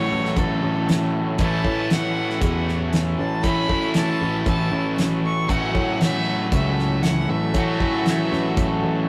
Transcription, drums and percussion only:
0.25 snare
0.36 kick, closed hi-hat
0.89 snare, closed hi-hat
1.38 kick, closed hi-hat
1.65 kick
1.90 snare, closed hi-hat
2.30 snare
2.42 kick, closed hi-hat
2.69 snare
2.93 snare, closed hi-hat
3.44 kick, closed hi-hat
3.69 kick
3.94 snare, closed hi-hat
4.46 kick, closed hi-hat
4.98 snare, closed hi-hat
5.49 kick, closed hi-hat
5.75 kick
6.01 snare, closed hi-hat
6.52 kick, closed hi-hat
6.79 snare
7.03 snare, closed hi-hat
7.54 kick, closed hi-hat
7.80 kick
8.06 snare, closed hi-hat
8.33 snare
8.57 kick, closed hi-hat

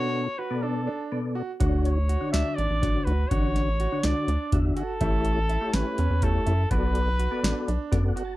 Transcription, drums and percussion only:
1.60 kick, closed hi-hat
1.85 closed hi-hat
2.09 closed hi-hat
2.34 snare, closed hi-hat
2.58 closed hi-hat
2.83 kick, snare, closed hi-hat
3.07 closed hi-hat
3.31 kick, closed hi-hat
3.56 snare, closed hi-hat
3.80 closed hi-hat
4.03 snare, closed hi-hat
4.28 closed hi-hat
4.52 kick, closed hi-hat
4.77 closed hi-hat
5.01 kick, closed hi-hat
5.25 closed hi-hat
5.50 closed hi-hat
5.74 snare, closed hi-hat
5.98 closed hi-hat
6.22 kick, closed hi-hat
6.47 closed hi-hat
6.71 kick, closed hi-hat
6.95 closed hi-hat
7.20 closed hi-hat
7.44 snare, closed hi-hat
7.68 closed hi-hat
7.92 kick, snare, closed hi-hat
8.17 closed hi-hat

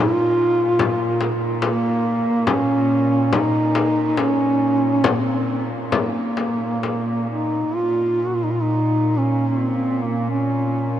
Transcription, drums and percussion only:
0.79 frame drum
1.21 frame drum
1.62 frame drum
2.47 frame drum
3.33 frame drum
3.75 frame drum
4.17 frame drum
5.04 frame drum
5.92 frame drum
6.37 frame drum
6.83 frame drum

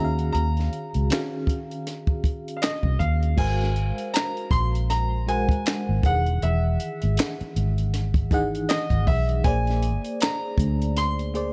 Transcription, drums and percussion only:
0.19 closed hi-hat
0.35 closed hi-hat
0.57 snare, closed hi-hat
0.73 closed hi-hat
0.94 closed hi-hat
1.10 snare, clap, closed hi-hat
1.47 kick, closed hi-hat
1.71 closed hi-hat
1.87 snare, closed hi-hat
2.07 kick
2.24 kick, closed hi-hat
2.48 closed hi-hat
2.62 snare, clap, closed hi-hat
2.83 kick
3.00 kick, closed hi-hat
3.23 closed hi-hat
3.38 kick, crash
3.61 snare, closed hi-hat
3.76 closed hi-hat
3.98 closed hi-hat
4.14 snare, clap, closed hi-hat
4.37 closed hi-hat
4.51 kick, closed hi-hat
4.75 closed hi-hat
4.90 snare, closed hi-hat
5.29 closed hi-hat
5.49 kick, closed hi-hat
5.66 snare, clap, closed hi-hat
6.03 kick, closed hi-hat
6.26 closed hi-hat
6.42 closed hi-hat
6.80 closed hi-hat
7.02 closed hi-hat
7.17 snare, clap, closed hi-hat
7.41 closed hi-hat
7.56 closed hi-hat
7.78 closed hi-hat
7.94 snare, closed hi-hat
8.14 kick, closed hi-hat
8.31 kick, closed hi-hat
8.55 closed hi-hat
8.69 snare, clap, closed hi-hat
8.90 kick, closed hi-hat
9.07 kick, open hi-hat
9.29 closed hi-hat
9.44 kick, closed hi-hat
9.67 snare, closed hi-hat
9.82 closed hi-hat
10.05 closed hi-hat
10.20 snare, clap, closed hi-hat
10.58 kick, closed hi-hat
10.82 closed hi-hat
10.97 snare, closed hi-hat
11.19 closed hi-hat
11.35 closed hi-hat

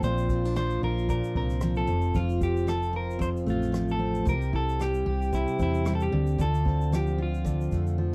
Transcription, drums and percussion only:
0.03 kick, shaker
0.18 shaker
0.29 kick, shaker
0.45 shaker
0.56 cross-stick, shaker
0.70 shaker
0.98 shaker
1.09 kick, shaker
1.24 shaker
1.35 kick
1.49 cross-stick, shaker
1.61 cross-stick, shaker
1.75 shaker
1.87 shaker
2.02 shaker
2.15 kick, shaker
2.29 shaker
2.41 kick, shaker
2.57 shaker
2.68 cross-stick, shaker
2.82 shaker
3.10 shaker
3.21 kick, shaker
3.37 shaker
3.48 shaker
3.62 cross-stick, shaker
3.74 cross-stick, shaker
3.88 shaker
4.15 shaker
4.27 kick, shaker
4.42 shaker
4.53 kick
4.69 shaker
4.80 cross-stick, shaker
4.94 shaker
5.22 shaker
5.33 kick, shaker
5.48 shaker
5.59 kick, shaker
5.74 shaker
5.86 cross-stick, shaker
6.00 shaker
6.27 shaker
6.39 kick, shaker
6.54 shaker
6.66 kick
6.81 shaker
6.93 cross-stick, shaker
7.07 shaker
7.34 shaker
7.46 kick, shaker
7.61 shaker
7.71 kick, shaker
7.87 shaker

